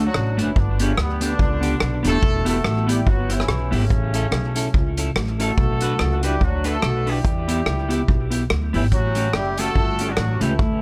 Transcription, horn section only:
0.05 F#3 D4 F#4
0.40 E3 C#4 E4
0.58 D3 B3 D4
0.81 C#3 A3 C#4
1.01 G3 B3
1.23 D3 B3 D4
1.41 D3 B3 D4
2.08 A3 E4 A4
2.49 A3 F#4 A4
2.90 G3 E4 G4
3.08 F#3 B3 F#4
3.33 E3 C#4 E4
3.74 C#3 A3 C#4
5.39 A3 F#4 A4
6.24 G3 E4 G4
6.43 F#3 D4 F#4
6.67 A3 F#4 A4
7.10 G3 E4 G4
8.74 E3 C#4 E4
8.92 F#3 C#4 F#4
9.34 G3 E4 G4
9.58 A3 F#4 A4
10.09 F#3 D4 F#4
10.41 E3 A3 E4

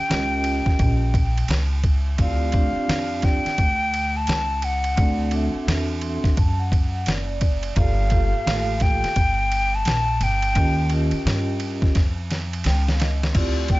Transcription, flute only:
Already playing: G5
2.20 F5
3.24 G5
4.17 A5
4.64 F#5
7.77 F5
8.82 G5
9.75 A5
10.23 G5
13.71 G5

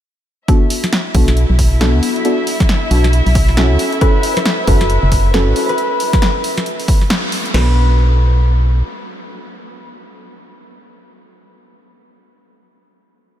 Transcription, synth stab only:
0.48 B3 D4 F#4 A4
1.14 B3 D4 F#4 A4
1.81 B3 D4 F#4 A4
2.25 B3 D4 F#4 A4
2.91 B3 D4 F#4 A4
3.57 C#4 E4 F#4 A4
4.01 C#4 E4 F#4 A4
4.67 C#4 E4 F#4 A4
5.34 C#4 E4 F#4 A4
7.54 B3 D4 F#4 A4

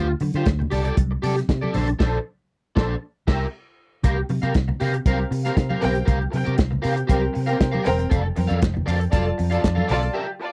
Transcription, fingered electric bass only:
Already playing: D2
0.21 D3
0.34 D3
0.47 D2
0.72 C2
0.97 C2
1.23 C3
1.49 C3
1.74 A#1
2.00 A#1
2.77 A#1
3.28 C2
4.04 C2
4.29 C3
4.43 C3
4.55 C2
4.81 C3
5.06 C2
5.31 C3
5.57 C3
5.83 B1
6.08 C2
6.34 C3
6.48 C3
6.58 C2
6.85 C3
7.09 C2
7.36 C3
7.60 C3
7.87 E1
8.12 F1
8.37 F2
8.51 F2
8.63 F1
8.88 F2
9.13 F1
9.39 F2
9.64 F2
9.90 B1

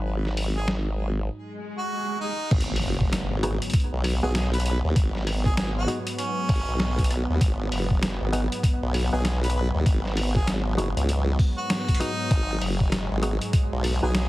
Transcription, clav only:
3.43 B3 D#4 F#4 G#4
4.23 B3 D#4 F#4 G#4
5.88 B3 D#4 F#4 G#4
8.33 B3 D#4 F#4 G#4
9.13 B3 D#4 F#4 G#4
10.77 B3 D#4 F#4 G#4
12.00 B3 D#4 F#4 G#4
13.22 B3 D#4 F#4 G#4
14.03 B3 D#4 F#4 G#4

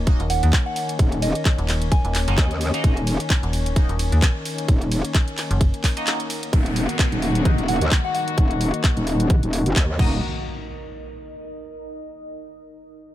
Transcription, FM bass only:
Already playing: D#1
0.20 D#1
0.43 D#2
1.58 D#1
2.05 D#1
2.28 F#1
3.43 D#1
3.89 D#1
4.12 D#2
5.51 F#1

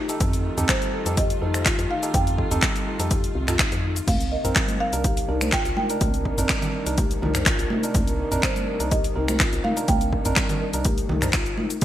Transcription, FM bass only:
0.21 F2
0.58 D#2
1.06 F2
1.42 F2
1.79 F2
2.14 F2
2.51 D#2
3.00 F2
3.35 C2
3.72 F2
4.07 C2
4.45 A#1
4.93 C2
5.28 C2
5.65 C2
6.01 C2
6.38 A#1
6.86 C2
7.22 C2
7.59 C2
7.95 C2
8.32 A#1
8.80 C2
9.16 C2
9.53 C2
9.89 C2
10.26 A#1
10.74 C2
11.09 C2
11.46 G1

